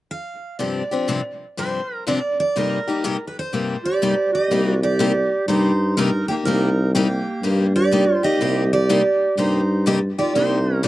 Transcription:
0.11 steel-string acoustic guitar F5
0.59 steel-string acoustic guitar G2 C3 F3 C4 D4 G4 D5
0.91 steel-string acoustic guitar F3 C4 D4 G4
1.08 steel-string acoustic guitar G2 C3 F3 C4 D4 G4
1.57 steel-string acoustic guitar G2 C3 F3 C4 D4 G4 C5
2.07 steel-string acoustic guitar G2 C3 F3 C4 D4 G4 D5
2.40 steel-string acoustic guitar D5
2.56 steel-string acoustic guitar G2 C3 G3 A#3 D#4 G4 A#4
2.88 steel-string acoustic guitar G3 A#3 D#4 G4
3.04 steel-string acoustic guitar G2 C3 G3 A#3 D#4 G4
3.27 steel-string acoustic guitar B4
3.39 steel-string acoustic guitar C5
3.53 steel-string acoustic guitar G2 C3 G3 A#3 D#4 G4
3.84 clarinet G4, steel-string acoustic guitar D5
4.02 steel-string acoustic guitar G2 C3 G3 A#3 D#4 G4
4.33 clarinet G4, steel-string acoustic guitar D#5
4.50 tuba C2, steel-string acoustic guitar C3 G3 A#3 D#4 G4
4.67 clarinet F#4
4.72 steel-string acoustic guitar D5
4.82 clarinet G4, steel-string acoustic guitar D5
4.99 steel-string acoustic guitar C3 G3 A#3 D#4 G4
5.47 tuba G2, steel-string acoustic guitar C3 G3 A#3 D#4 G4 C5, clarinet D#4
5.97 steel-string acoustic guitar C3 G3 A#3 D#4 G4 A#4, clarinet D#4
6.28 clarinet A#3, steel-string acoustic guitar A#3 D#4 G4
6.44 tuba C2, steel-string acoustic guitar C3 G3 A#3 D#4 G4 A#4, clarinet D#4
6.95 steel-string acoustic guitar C3 G3 A#3 D#4 G4, clarinet A#3
7.42 tuba G2, steel-string acoustic guitar C3 G3 A#3 D#4 G4
7.76 clarinet G4, steel-string acoustic guitar D5
7.91 steel-string acoustic guitar C3 G3 A#3 D#4 G4
8.23 steel-string acoustic guitar A#3 D#4 G4 D#5, clarinet G4
8.39 tuba C2, steel-string acoustic guitar C3 G3 A#3 D#4 G4
8.73 clarinet G4, steel-string acoustic guitar D5
8.89 steel-string acoustic guitar C3 G3 A#3 D#4 G4
9.37 tuba G2, steel-string acoustic guitar C3 G3 A#3 D#4 G4 C5, clarinet D#4
9.86 steel-string acoustic guitar C3 G3 A#3 D#4 G4 D#5, clarinet G4
10.18 steel-string acoustic guitar A#3 D#4 G4 D5, clarinet F4
10.34 tuba C2, steel-string acoustic guitar C3 G3 A#3 D#4 G4 C5, clarinet D#4
10.83 steel-string acoustic guitar C3 G3 A#3 D#4 G4 D#5

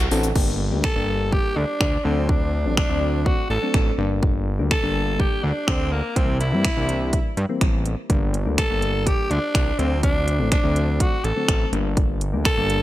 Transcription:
0.11 analog synth bass A1, synth keys C4 D4 F#4 A4, open hi-hat, shaker
0.23 shaker
0.35 analog synth bass G1, synth keys G3 A#3 D4 G4, kick, crash
0.71 analog synth bass D2, synth keys G3 A#3 D4 G4
0.84 alto saxophone A4, finger snap, kick
0.96 analog synth bass G1, synth keys G3 A#3 D4 G4
1.32 alto saxophone G4, kick
1.56 analog synth bass D2, alto saxophone D4
1.81 analog synth bass D2, finger snap, kick
2.05 analog synth bass D2, synth keys F#3 A3 C4 D4, alto saxophone C4
2.29 alto saxophone D4, kick
2.65 analog synth bass A1, synth keys F#3 A3 C4 D4
2.77 alto saxophone D4, finger snap, kick
2.89 analog synth bass D2, synth keys F#3 A3 C4 D4
3.26 alto saxophone F#4, kick
3.50 analog synth bass A1, alto saxophone A4
3.62 synth keys F#3 A3 C4 D4
3.74 analog synth bass A1, finger snap, kick
3.98 analog synth bass G1, synth keys D3 G3 A#3 D4
4.23 kick
4.59 analog synth bass D2, synth keys D3 G3 A#3 D4
4.71 alto saxophone A4, finger snap, kick
4.83 analog synth bass G1, synth keys D3 G3 A#3 D4
5.20 alto saxophone G4, kick
5.44 analog synth bass D2, alto saxophone D4
5.68 analog synth bass D2, alto saxophone C4, finger snap, kick
5.92 alto saxophone A#3
6.16 analog synth bass C2, synth keys E3 G3 A#3 C4, alto saxophone C4, kick, closed hi-hat
6.41 alto saxophone E4, closed hi-hat
6.52 analog synth bass G2, synth keys E3 G3 A#3 C4
6.65 finger snap, kick, closed hi-hat
6.77 analog synth bass C2, synth keys E3 G3 A#3 D4
6.89 closed hi-hat
7.13 kick, closed hi-hat
7.37 analog synth bass G2, closed hi-hat
7.49 synth keys E3 G3 A#3 C4
7.61 analog synth bass A1, finger snap, kick, closed hi-hat
7.86 closed hi-hat
8.09 analog synth bass G1, synth keys D3 G3 A#3 D4, kick, closed hi-hat
8.34 closed hi-hat
8.46 analog synth bass D2, synth keys D3 G3 A#3 D4
8.58 alto saxophone A4, finger snap, kick, closed hi-hat
8.70 analog synth bass G1, synth keys D3 G3 A#3 D4
8.82 closed hi-hat
9.06 alto saxophone G4, kick, closed hi-hat
9.31 analog synth bass D2, alto saxophone D4, closed hi-hat
9.55 analog synth bass C2, finger snap, kick, closed hi-hat
9.79 analog synth bass D2, synth keys D3 F#3 A3 C4, alto saxophone C4, closed hi-hat
10.03 alto saxophone D4, kick, closed hi-hat
10.28 closed hi-hat
10.39 analog synth bass A1, synth keys D3 F#3 A3 C4
10.52 alto saxophone D4, finger snap, kick, closed hi-hat
10.63 analog synth bass D2, synth keys D3 F#3 A3 C4
10.76 closed hi-hat
11.00 alto saxophone F#4, kick, closed hi-hat
11.24 analog synth bass A1, alto saxophone A4, closed hi-hat
11.36 synth keys D3 F#3 A3 C4
11.48 analog synth bass A1, finger snap, kick, closed hi-hat
11.72 analog synth bass G1, synth keys D3 G3 A#3 D4, closed hi-hat
11.97 kick, closed hi-hat
12.21 closed hi-hat
12.33 analog synth bass D2, synth keys D3 G3 A#3 D4
12.45 alto saxophone A4, finger snap, kick, closed hi-hat
12.57 analog synth bass G1, synth keys D3 G3 A#3 D4
12.70 closed hi-hat

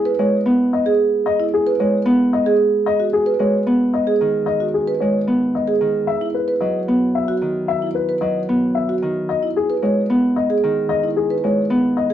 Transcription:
Already playing: harp G#3 B3
0.05 marimba B4
0.19 harp G#3, grand piano C#5
0.46 harp B3
0.73 grand piano D#5
0.86 marimba G#4
1.26 grand piano D#5
1.40 marimba E4
1.54 grand piano G#4
1.66 marimba B4
1.80 harp G#3, grand piano C#5
2.05 harp B3
2.33 grand piano D#5
2.46 marimba G#4
2.86 grand piano D#5
3.00 marimba F#4
3.13 grand piano G#4
3.26 marimba B4
3.39 harp G#3, grand piano C#5
3.67 harp B3
3.94 grand piano D#5
4.07 marimba G#4
4.21 harp D#3
4.46 grand piano D#5
4.60 marimba F#4
4.74 grand piano G#4
4.87 marimba B4
5.00 harp G#3, grand piano C#5
5.27 harp B3
5.55 grand piano D#5
5.67 marimba G#4
5.81 harp D#3
6.07 grand piano E5
6.21 marimba E4
6.34 grand piano B4
6.48 marimba B4
6.61 harp F#3, grand piano D#5
6.88 harp B3
7.15 grand piano E5
7.28 marimba F#4
7.42 harp D#3
7.68 grand piano E5
7.82 marimba E4
7.95 grand piano B4
8.09 marimba B4
8.21 harp F#3, grand piano D#5
8.49 harp B3
8.75 grand piano E5
8.89 marimba F#4
9.02 harp D#3
9.29 grand piano D#5
9.43 marimba E4
9.56 grand piano G#4
9.70 marimba B4
9.82 harp G#3, grand piano C#5
10.10 harp B3
10.36 grand piano D#5
10.50 marimba G#4
10.64 harp D#3
10.89 grand piano D#5
11.03 marimba E4
11.16 grand piano G#4
11.30 marimba B4
11.44 harp G#3, grand piano C#5
11.70 harp B3
11.97 grand piano D#5
12.10 marimba G#4

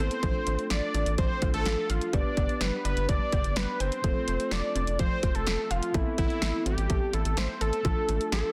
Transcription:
0.00 tine electric piano B3 C4 E4 A4, synth arpeggio sound A4, analog synth lead C5
0.11 closed hi-hat
0.23 analog synth bass A1, synth arpeggio sound F3, tine electric piano A3 D4 F4 A4, kick, closed hi-hat
0.47 analog synth bass A1, synth arpeggio sound A3, closed hi-hat
0.59 closed hi-hat
0.70 analog synth bass A1, synth arpeggio sound F3, analog synth lead D5, snare, closed hi-hat
0.94 analog synth bass A1, synth arpeggio sound D4, closed hi-hat
1.06 analog synth bass A1, closed hi-hat
1.18 analog synth bass A1, synth arpeggio sound F3, analog synth lead C5, kick, closed hi-hat
1.42 analog synth bass A1, tine electric piano A3 D4 F4 A4, synth arpeggio sound F4, kick, closed hi-hat
1.54 analog synth bass A1, analog synth lead A4, closed hi-hat
1.66 analog synth bass A1, synth arpeggio sound F3, snare, closed hi-hat
1.90 analog synth bass A1, analog synth lead F4, synth arpeggio sound F5, closed hi-hat
2.01 closed hi-hat
2.13 analog synth bass G1, synth arpeggio sound G3, tine electric piano B3 D4 G4 B4, analog synth lead D5, kick, closed hi-hat
2.37 analog synth bass G1, synth arpeggio sound B3, kick, closed hi-hat
2.49 closed hi-hat
2.61 analog synth bass G1, synth arpeggio sound G3, analog synth lead B4, snare, closed hi-hat
2.85 analog synth bass G1, synth arpeggio sound D4, analog synth lead B4, closed hi-hat
2.97 analog synth bass G1, closed hi-hat
3.09 analog synth bass G1, synth arpeggio sound G3, analog synth lead D5, kick, closed hi-hat
3.32 analog synth bass G1, synth arpeggio sound G4, kick, closed hi-hat
3.44 analog synth bass G1, closed hi-hat
3.56 analog synth bass G1, synth arpeggio sound G3, analog synth lead B4, snare, closed hi-hat
3.80 analog synth bass G1, analog synth lead C5, synth arpeggio sound G5, closed hi-hat
3.92 closed hi-hat
4.04 analog synth bass F1, synth arpeggio sound F3, tine electric piano A3 C4 F4 A4, kick, closed hi-hat
4.28 analog synth bass F1, synth arpeggio sound A3, closed hi-hat
4.40 closed hi-hat
4.51 analog synth bass F1, synth arpeggio sound F3, analog synth lead D5, snare, closed hi-hat
4.75 analog synth bass F1, synth arpeggio sound C4, closed hi-hat
4.87 analog synth bass F1, closed hi-hat
4.99 analog synth bass F1, synth arpeggio sound F3, analog synth lead C5, kick, closed hi-hat
5.23 analog synth bass F1, synth arpeggio sound F4, kick, closed hi-hat
5.35 analog synth bass F1, analog synth lead A4, closed hi-hat
5.47 analog synth bass F1, synth arpeggio sound F3, snare, closed hi-hat
5.71 analog synth bass F1, analog synth lead F4, synth arpeggio sound F5, closed hi-hat
5.83 closed hi-hat
5.94 analog synth bass A1, synth arpeggio sound A3, tine electric piano B3 C4 E4 A4, analog synth lead E4, kick, closed hi-hat
6.18 analog synth bass A1, synth arpeggio sound B3, analog synth lead E4, kick, closed hi-hat
6.30 closed hi-hat
6.42 analog synth bass A1, synth arpeggio sound A3, snare, closed hi-hat
6.66 analog synth bass A1, synth arpeggio sound C4, analog synth lead G4, closed hi-hat
6.78 analog synth bass A1, closed hi-hat
6.90 analog synth bass A1, synth arpeggio sound A3, kick, closed hi-hat
7.13 analog synth bass A1, synth arpeggio sound E4, analog synth lead A4, closed hi-hat
7.25 analog synth bass A1, closed hi-hat
7.37 analog synth bass A1, synth arpeggio sound A3, analog synth lead C5, snare, closed hi-hat
7.61 analog synth bass A1, synth arpeggio sound A4, analog synth lead A4, closed hi-hat
7.73 closed hi-hat
7.85 analog synth bass A1, synth arpeggio sound F3, tine electric piano A3 D4 F4 A4, kick, closed hi-hat
8.09 analog synth bass A1, synth arpeggio sound A3, closed hi-hat
8.21 closed hi-hat
8.32 analog synth bass A1, synth arpeggio sound F3, analog synth lead A4, snare, closed hi-hat

